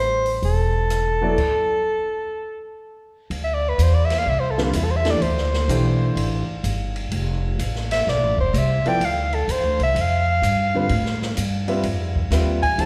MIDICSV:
0, 0, Header, 1, 6, 480
1, 0, Start_track
1, 0, Tempo, 478088
1, 1388, Time_signature, 4, 2, 24, 8
1, 6664, Tempo, 473186
1, 12970, End_track
2, 0, Start_track
2, 0, Title_t, "Soprano saxophone"
2, 0, Program_c, 0, 64
2, 0, Note_on_c, 0, 72, 89
2, 399, Note_off_c, 0, 72, 0
2, 454, Note_on_c, 0, 69, 85
2, 2804, Note_off_c, 0, 69, 0
2, 3453, Note_on_c, 0, 76, 73
2, 3555, Note_on_c, 0, 74, 77
2, 3570, Note_off_c, 0, 76, 0
2, 3702, Note_on_c, 0, 71, 73
2, 3717, Note_off_c, 0, 74, 0
2, 3842, Note_on_c, 0, 72, 71
2, 3857, Note_off_c, 0, 71, 0
2, 3954, Note_on_c, 0, 74, 79
2, 3969, Note_off_c, 0, 72, 0
2, 4068, Note_on_c, 0, 76, 80
2, 4083, Note_off_c, 0, 74, 0
2, 4199, Note_on_c, 0, 77, 92
2, 4214, Note_off_c, 0, 76, 0
2, 4306, Note_on_c, 0, 76, 80
2, 4321, Note_off_c, 0, 77, 0
2, 4414, Note_on_c, 0, 72, 73
2, 4429, Note_off_c, 0, 76, 0
2, 4523, Note_on_c, 0, 69, 73
2, 4538, Note_off_c, 0, 72, 0
2, 4655, Note_on_c, 0, 65, 66
2, 4670, Note_off_c, 0, 69, 0
2, 4786, Note_on_c, 0, 64, 63
2, 4801, Note_off_c, 0, 65, 0
2, 4857, Note_on_c, 0, 69, 75
2, 4872, Note_off_c, 0, 64, 0
2, 4925, Note_on_c, 0, 72, 74
2, 4940, Note_off_c, 0, 69, 0
2, 4981, Note_on_c, 0, 76, 90
2, 4996, Note_off_c, 0, 72, 0
2, 5126, Note_on_c, 0, 74, 81
2, 5141, Note_off_c, 0, 76, 0
2, 5235, Note_on_c, 0, 72, 77
2, 5250, Note_off_c, 0, 74, 0
2, 6666, Note_off_c, 0, 72, 0
2, 7962, Note_on_c, 0, 76, 93
2, 8141, Note_on_c, 0, 74, 86
2, 8157, Note_off_c, 0, 76, 0
2, 8444, Note_off_c, 0, 74, 0
2, 8455, Note_on_c, 0, 72, 79
2, 8634, Note_on_c, 0, 76, 87
2, 8649, Note_off_c, 0, 72, 0
2, 8935, Note_on_c, 0, 79, 103
2, 8951, Note_off_c, 0, 76, 0
2, 9111, Note_on_c, 0, 77, 84
2, 9126, Note_off_c, 0, 79, 0
2, 9411, Note_on_c, 0, 69, 69
2, 9427, Note_off_c, 0, 77, 0
2, 9579, Note_on_c, 0, 72, 77
2, 9595, Note_off_c, 0, 69, 0
2, 9884, Note_off_c, 0, 72, 0
2, 9903, Note_on_c, 0, 76, 90
2, 10081, Note_on_c, 0, 77, 91
2, 10097, Note_off_c, 0, 76, 0
2, 11495, Note_off_c, 0, 77, 0
2, 12734, Note_on_c, 0, 80, 97
2, 12918, Note_on_c, 0, 81, 87
2, 12934, Note_off_c, 0, 80, 0
2, 12970, Note_off_c, 0, 81, 0
2, 12970, End_track
3, 0, Start_track
3, 0, Title_t, "Grand piano"
3, 0, Program_c, 1, 0
3, 1219, Note_on_c, 1, 54, 64
3, 1226, Note_on_c, 1, 59, 58
3, 1229, Note_on_c, 1, 64, 60
3, 1231, Note_on_c, 1, 69, 59
3, 1235, Note_on_c, 1, 74, 69
3, 1368, Note_off_c, 1, 54, 0
3, 1372, Note_off_c, 1, 59, 0
3, 1373, Note_off_c, 1, 64, 0
3, 1375, Note_off_c, 1, 69, 0
3, 1377, Note_off_c, 1, 74, 0
3, 4596, Note_on_c, 1, 55, 61
3, 4601, Note_on_c, 1, 50, 67
3, 4606, Note_on_c, 1, 60, 63
3, 4608, Note_on_c, 1, 65, 62
3, 4609, Note_on_c, 1, 71, 73
3, 4737, Note_off_c, 1, 55, 0
3, 4740, Note_off_c, 1, 50, 0
3, 4742, Note_off_c, 1, 60, 0
3, 4743, Note_off_c, 1, 65, 0
3, 4744, Note_off_c, 1, 71, 0
3, 5068, Note_on_c, 1, 52, 61
3, 5070, Note_on_c, 1, 57, 57
3, 5070, Note_on_c, 1, 62, 58
3, 5077, Note_on_c, 1, 67, 54
3, 5077, Note_on_c, 1, 69, 68
3, 5213, Note_off_c, 1, 52, 0
3, 5214, Note_off_c, 1, 57, 0
3, 5214, Note_off_c, 1, 62, 0
3, 5217, Note_off_c, 1, 67, 0
3, 5217, Note_off_c, 1, 69, 0
3, 5714, Note_on_c, 1, 52, 58
3, 5716, Note_on_c, 1, 62, 52
3, 5717, Note_on_c, 1, 57, 55
3, 5724, Note_on_c, 1, 67, 52
3, 5727, Note_on_c, 1, 72, 63
3, 6442, Note_off_c, 1, 52, 0
3, 6443, Note_off_c, 1, 57, 0
3, 6443, Note_off_c, 1, 62, 0
3, 6447, Note_off_c, 1, 67, 0
3, 6448, Note_off_c, 1, 72, 0
3, 8915, Note_on_c, 1, 53, 71
3, 8918, Note_on_c, 1, 64, 61
3, 8920, Note_on_c, 1, 59, 63
3, 8922, Note_on_c, 1, 69, 60
3, 8925, Note_on_c, 1, 74, 79
3, 9058, Note_off_c, 1, 53, 0
3, 9060, Note_off_c, 1, 64, 0
3, 9061, Note_off_c, 1, 59, 0
3, 9062, Note_off_c, 1, 69, 0
3, 9064, Note_off_c, 1, 74, 0
3, 10830, Note_on_c, 1, 50, 59
3, 10835, Note_on_c, 1, 55, 55
3, 10837, Note_on_c, 1, 60, 53
3, 10837, Note_on_c, 1, 65, 54
3, 10843, Note_on_c, 1, 71, 68
3, 10976, Note_off_c, 1, 50, 0
3, 10979, Note_off_c, 1, 55, 0
3, 10979, Note_off_c, 1, 60, 0
3, 10979, Note_off_c, 1, 65, 0
3, 10982, Note_off_c, 1, 71, 0
3, 11776, Note_on_c, 1, 55, 70
3, 11780, Note_on_c, 1, 60, 58
3, 11783, Note_on_c, 1, 65, 62
3, 11787, Note_on_c, 1, 76, 75
3, 11789, Note_on_c, 1, 71, 64
3, 11928, Note_off_c, 1, 55, 0
3, 11929, Note_off_c, 1, 60, 0
3, 11931, Note_off_c, 1, 65, 0
3, 11933, Note_off_c, 1, 76, 0
3, 11934, Note_off_c, 1, 71, 0
3, 12422, Note_on_c, 1, 55, 64
3, 12422, Note_on_c, 1, 60, 59
3, 12426, Note_on_c, 1, 65, 61
3, 12431, Note_on_c, 1, 76, 68
3, 12435, Note_on_c, 1, 71, 60
3, 12710, Note_off_c, 1, 55, 0
3, 12710, Note_off_c, 1, 60, 0
3, 12712, Note_off_c, 1, 65, 0
3, 12714, Note_off_c, 1, 76, 0
3, 12716, Note_off_c, 1, 71, 0
3, 12893, Note_on_c, 1, 52, 59
3, 12900, Note_on_c, 1, 57, 51
3, 12906, Note_on_c, 1, 67, 49
3, 12909, Note_on_c, 1, 72, 64
3, 12912, Note_on_c, 1, 62, 48
3, 12970, Note_off_c, 1, 52, 0
3, 12970, Note_off_c, 1, 57, 0
3, 12970, Note_off_c, 1, 62, 0
3, 12970, Note_off_c, 1, 67, 0
3, 12970, Note_off_c, 1, 72, 0
3, 12970, End_track
4, 0, Start_track
4, 0, Title_t, "Upright bass"
4, 0, Program_c, 2, 32
4, 0, Note_on_c, 2, 33, 77
4, 382, Note_off_c, 2, 33, 0
4, 426, Note_on_c, 2, 28, 77
4, 1348, Note_off_c, 2, 28, 0
4, 3315, Note_on_c, 2, 38, 76
4, 3778, Note_off_c, 2, 38, 0
4, 3797, Note_on_c, 2, 40, 80
4, 4259, Note_off_c, 2, 40, 0
4, 4278, Note_on_c, 2, 36, 81
4, 4739, Note_off_c, 2, 36, 0
4, 4749, Note_on_c, 2, 40, 91
4, 5214, Note_off_c, 2, 40, 0
4, 5227, Note_on_c, 2, 38, 77
4, 5692, Note_off_c, 2, 38, 0
4, 5702, Note_on_c, 2, 35, 83
4, 6168, Note_off_c, 2, 35, 0
4, 6179, Note_on_c, 2, 33, 81
4, 6476, Note_off_c, 2, 33, 0
4, 6664, Note_on_c, 2, 31, 88
4, 7131, Note_off_c, 2, 31, 0
4, 7148, Note_on_c, 2, 29, 79
4, 7615, Note_off_c, 2, 29, 0
4, 7630, Note_on_c, 2, 33, 85
4, 8096, Note_off_c, 2, 33, 0
4, 8118, Note_on_c, 2, 35, 82
4, 8276, Note_off_c, 2, 35, 0
4, 8276, Note_on_c, 2, 33, 55
4, 8417, Note_off_c, 2, 33, 0
4, 8423, Note_on_c, 2, 29, 63
4, 8576, Note_off_c, 2, 29, 0
4, 8584, Note_on_c, 2, 36, 89
4, 8884, Note_off_c, 2, 36, 0
4, 9067, Note_on_c, 2, 38, 76
4, 9536, Note_off_c, 2, 38, 0
4, 9544, Note_on_c, 2, 40, 85
4, 9704, Note_off_c, 2, 40, 0
4, 9704, Note_on_c, 2, 38, 50
4, 9856, Note_off_c, 2, 38, 0
4, 9862, Note_on_c, 2, 36, 62
4, 10016, Note_off_c, 2, 36, 0
4, 10022, Note_on_c, 2, 41, 81
4, 10493, Note_off_c, 2, 41, 0
4, 10503, Note_on_c, 2, 43, 81
4, 10973, Note_off_c, 2, 43, 0
4, 10987, Note_on_c, 2, 45, 73
4, 11454, Note_off_c, 2, 45, 0
4, 11469, Note_on_c, 2, 43, 82
4, 11932, Note_off_c, 2, 43, 0
4, 11938, Note_on_c, 2, 41, 78
4, 12408, Note_off_c, 2, 41, 0
4, 12414, Note_on_c, 2, 39, 90
4, 12885, Note_off_c, 2, 39, 0
4, 12898, Note_on_c, 2, 38, 79
4, 12970, Note_off_c, 2, 38, 0
4, 12970, End_track
5, 0, Start_track
5, 0, Title_t, "Muted upright bass strokes"
5, 8896, Note_on_c, 9, 29, 37
5, 8997, Note_off_c, 9, 29, 0
5, 12970, End_track
6, 0, Start_track
6, 0, Title_t, "Drums"
6, 257, Note_on_c, 9, 46, 35
6, 358, Note_off_c, 9, 46, 0
6, 428, Note_on_c, 9, 46, 41
6, 528, Note_off_c, 9, 46, 0
6, 905, Note_on_c, 9, 42, 49
6, 908, Note_on_c, 9, 37, 56
6, 1006, Note_off_c, 9, 42, 0
6, 1009, Note_off_c, 9, 37, 0
6, 1385, Note_on_c, 9, 49, 61
6, 1389, Note_on_c, 9, 36, 71
6, 1485, Note_off_c, 9, 49, 0
6, 1490, Note_off_c, 9, 36, 0
6, 3320, Note_on_c, 9, 51, 55
6, 3421, Note_off_c, 9, 51, 0
6, 3803, Note_on_c, 9, 44, 54
6, 3803, Note_on_c, 9, 51, 62
6, 3903, Note_off_c, 9, 44, 0
6, 3903, Note_off_c, 9, 51, 0
6, 4118, Note_on_c, 9, 51, 60
6, 4121, Note_on_c, 9, 38, 33
6, 4218, Note_off_c, 9, 51, 0
6, 4221, Note_off_c, 9, 38, 0
6, 4597, Note_on_c, 9, 38, 45
6, 4697, Note_off_c, 9, 38, 0
6, 4752, Note_on_c, 9, 44, 59
6, 4752, Note_on_c, 9, 51, 67
6, 4853, Note_off_c, 9, 44, 0
6, 4853, Note_off_c, 9, 51, 0
6, 5069, Note_on_c, 9, 51, 45
6, 5072, Note_on_c, 9, 38, 47
6, 5169, Note_off_c, 9, 51, 0
6, 5172, Note_off_c, 9, 38, 0
6, 5239, Note_on_c, 9, 51, 57
6, 5339, Note_off_c, 9, 51, 0
6, 5400, Note_on_c, 9, 38, 27
6, 5501, Note_off_c, 9, 38, 0
6, 5558, Note_on_c, 9, 38, 41
6, 5659, Note_off_c, 9, 38, 0
6, 5716, Note_on_c, 9, 44, 51
6, 5716, Note_on_c, 9, 51, 64
6, 5816, Note_off_c, 9, 44, 0
6, 5816, Note_off_c, 9, 51, 0
6, 6194, Note_on_c, 9, 51, 60
6, 6295, Note_off_c, 9, 51, 0
6, 6666, Note_on_c, 9, 44, 49
6, 6666, Note_on_c, 9, 51, 58
6, 6767, Note_off_c, 9, 44, 0
6, 6767, Note_off_c, 9, 51, 0
6, 6989, Note_on_c, 9, 51, 47
6, 7090, Note_off_c, 9, 51, 0
6, 7149, Note_on_c, 9, 51, 58
6, 7250, Note_off_c, 9, 51, 0
6, 7634, Note_on_c, 9, 44, 52
6, 7634, Note_on_c, 9, 51, 65
6, 7735, Note_off_c, 9, 44, 0
6, 7735, Note_off_c, 9, 51, 0
6, 7800, Note_on_c, 9, 38, 28
6, 7902, Note_off_c, 9, 38, 0
6, 7955, Note_on_c, 9, 51, 59
6, 7965, Note_on_c, 9, 38, 41
6, 8057, Note_off_c, 9, 51, 0
6, 8067, Note_off_c, 9, 38, 0
6, 8128, Note_on_c, 9, 38, 37
6, 8229, Note_off_c, 9, 38, 0
6, 8436, Note_on_c, 9, 36, 56
6, 8538, Note_off_c, 9, 36, 0
6, 8596, Note_on_c, 9, 44, 52
6, 8596, Note_on_c, 9, 51, 58
6, 8698, Note_off_c, 9, 44, 0
6, 8698, Note_off_c, 9, 51, 0
6, 8914, Note_on_c, 9, 51, 46
6, 9016, Note_off_c, 9, 51, 0
6, 9071, Note_on_c, 9, 51, 62
6, 9173, Note_off_c, 9, 51, 0
6, 9391, Note_on_c, 9, 51, 43
6, 9493, Note_off_c, 9, 51, 0
6, 9555, Note_on_c, 9, 44, 49
6, 9555, Note_on_c, 9, 51, 65
6, 9657, Note_off_c, 9, 44, 0
6, 9657, Note_off_c, 9, 51, 0
6, 9868, Note_on_c, 9, 51, 43
6, 9969, Note_off_c, 9, 51, 0
6, 10034, Note_on_c, 9, 51, 66
6, 10135, Note_off_c, 9, 51, 0
6, 10514, Note_on_c, 9, 44, 54
6, 10514, Note_on_c, 9, 51, 63
6, 10615, Note_off_c, 9, 44, 0
6, 10615, Note_off_c, 9, 51, 0
6, 10981, Note_on_c, 9, 51, 58
6, 11082, Note_off_c, 9, 51, 0
6, 11148, Note_on_c, 9, 38, 29
6, 11249, Note_off_c, 9, 38, 0
6, 11315, Note_on_c, 9, 38, 42
6, 11416, Note_off_c, 9, 38, 0
6, 11462, Note_on_c, 9, 44, 59
6, 11462, Note_on_c, 9, 51, 66
6, 11564, Note_off_c, 9, 44, 0
6, 11564, Note_off_c, 9, 51, 0
6, 11778, Note_on_c, 9, 51, 44
6, 11879, Note_off_c, 9, 51, 0
6, 11936, Note_on_c, 9, 51, 65
6, 12037, Note_off_c, 9, 51, 0
6, 12263, Note_on_c, 9, 36, 56
6, 12364, Note_off_c, 9, 36, 0
6, 12424, Note_on_c, 9, 44, 52
6, 12424, Note_on_c, 9, 51, 63
6, 12427, Note_on_c, 9, 38, 37
6, 12525, Note_off_c, 9, 44, 0
6, 12525, Note_off_c, 9, 51, 0
6, 12528, Note_off_c, 9, 38, 0
6, 12742, Note_on_c, 9, 51, 46
6, 12745, Note_on_c, 9, 36, 55
6, 12843, Note_off_c, 9, 51, 0
6, 12847, Note_off_c, 9, 36, 0
6, 12902, Note_on_c, 9, 51, 63
6, 12970, Note_off_c, 9, 51, 0
6, 12970, End_track
0, 0, End_of_file